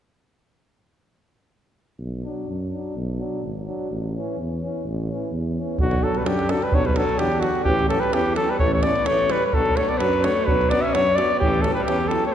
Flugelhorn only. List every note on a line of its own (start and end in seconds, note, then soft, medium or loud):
5.81 6.05 F#4 medium
6.03 6.19 A4 medium
6.18 6.28 B4 medium
6.26 6.51 G4 medium
6.50 6.65 A4 medium
6.64 6.76 B4 medium
6.75 6.88 C#5 medium
6.86 6.98 B4 medium
6.97 7.20 A4 medium
7.18 7.42 G4 medium
7.40 7.64 F#4 medium
7.65 7.87 G4 loud
7.89 8.02 A4 medium
8.00 8.15 B4 medium
8.14 8.36 G4 medium
8.36 8.52 A4 medium
8.50 8.58 B4 medium
8.59 8.71 C#5 medium
8.74 8.84 C#5 medium
8.83 9.07 D5 medium
9.06 9.33 C#5 medium
9.31 9.46 B4 medium
9.47 9.55 B4 medium
9.54 9.78 A4 medium
9.76 9.90 C#5 medium
9.89 10.00 D5 medium
9.98 10.26 B4 medium
10.24 10.46 C#5 medium
10.45 10.71 B4 medium
10.69 10.83 D5 medium
10.82 10.95 E5 medium
10.93 11.17 C#5 loud
11.15 11.39 D5 medium
11.39 11.63 G4 medium
11.62 11.73 A4 medium
11.74 11.83 B4 medium
11.84 12.10 G4 medium
12.08 12.26 A4 medium
12.26 12.34 C#5 medium